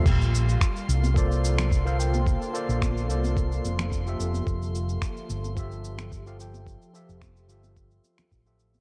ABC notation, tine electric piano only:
X:1
M:4/4
L:1/16
Q:1/4=109
K:Bblyd
V:1 name="Tine electric piano"
z8 [B,FAcd]4- [B,FAcd] [B,FAcf] [B,FAc]2- | [B,FAc]2 [B,FAcd]4 [B,FAcd]6- [B,FAcd] [F,FGAe]3- | [F,FGAe]8 [F,FGAe]4- [F,FGAe] [F,FGAf] [F,FGAg]2- | [F,FGAg]2 [F,FGAe]4 [F,FGAe]6- [F,FGAe] [F,FGAe]3 |]